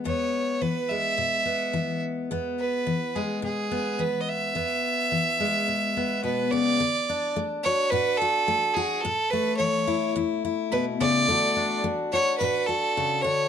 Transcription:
<<
  \new Staff \with { instrumentName = "Fiddle" } { \time 4/4 \key e \mixolydian \tempo 4 = 107 cis''4 b'8 e''2 r8 | r8 b'4 gis'8 gis'4 b'16. dis''32 e''8~ | e''2. b'8 d''8~ | d''4 r8 cis''8 b'8 a'4 gis'8 |
a'8 b'8 cis''4 r4 b'8 d''8~ | d''4 r8 cis''8 b'8 a'4 cis''8 | }
  \new Staff \with { instrumentName = "Steel-string acoustic guitar" } { \clef bass \time 4/4 \key e \mixolydian << { b4. gis4 b4. | b4. gis4 b4. | b4. gis4 b4. | r8 d'4 fis'8 fis'8 fis'4 fis'8 |
r8 a4 e'8 e'8 e'4. | <a d' fis'>8 d'4 fis'8 fis'8 fis'4. | } \\ { e,4 e4 b,4 e4 | e,4 e4 b,4 e4 | e,4 e4 b,4 b,8 cis8 | d4 a4 a,4 a4 |
a,4 e4 e,4 b,8 cis8 | d4 a4 a,4 cis8 d8 | } >> }
>>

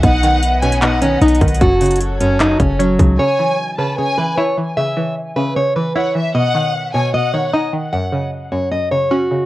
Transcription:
<<
  \new Staff \with { instrumentName = "Violin section" } { \time 4/4 \key cis \minor \tempo 4 = 152 fis''4. gis''8 fis''4 r4 | r1 | gis''4. a''8 gis''4 r4 | r2. fis''8 e''8 |
fis''4. gis''8 fis''4 r4 | r1 | }
  \new Staff \with { instrumentName = "Steel-string acoustic guitar" } { \time 4/4 \key cis \minor dis'4 r8 cis'8 dis'8 cis'8 dis'8 r8 | fis'4 r8 cis'8 dis'8 cis'8 fis4 | cis''4 r8 b'8 cis''8 b'8 cis''8 r8 | e''4 r8 b'8 cis''8 b'8 cis''8 r8 |
dis''4 r8 cis''8 dis''8 cis''8 dis''8 r8 | fis''4 r8 cis''8 dis''8 cis''8 fis'4 | }
  \new Staff \with { instrumentName = "String section" } { \time 4/4 \key cis \minor <b b' dis'' fis''>1 | <fis fis' a' cis''>1 | r1 | r1 |
r1 | r1 | }
  \new Staff \with { instrumentName = "Synth pluck" } { \clef bass \time 4/4 \key cis \minor b,8 dis4 b,8 b,8 dis8 dis'8 dis8 | fis,8 cis4 fis,8 fis,8 cis8 cis'8 cis8 | cis8 e4 cis8 cis8 e8 e'8 e8 | cis8 e4 cis8 cis8 e8 e'8 e8 |
b,8 dis4 b,8 b,8 dis8 dis'8 dis8 | fis,8 cis4 fis,8 fis,8 cis8 cis'8 cis8 | }
  \new Staff \with { instrumentName = "808-style bass" } { \clef bass \time 4/4 \key cis \minor b,,2. b,,8 b,,8 | fis,,2~ fis,,8 fis,,4 cis,8 | r1 | r1 |
r1 | r1 | }
  \new DrumStaff \with { instrumentName = "Drums" } \drummode { \time 4/4 <hh bd>8 hh8 hh8 hh16 hh16 <hc hh>8 hh8 \tuplet 3/2 { hh16 hh16 hh16 <hh bd>16 hh16 hh16 } | <hh bd>8 <hh hho>32 hh32 hh32 hh32 hh8 hh8 <hc hh>8 <hh bd>8 hh8 <hh bd>8 | r4 r4 r4 r4 | r4 r4 r4 r4 |
r4 r4 r4 r4 | r4 r4 r4 r4 | }
>>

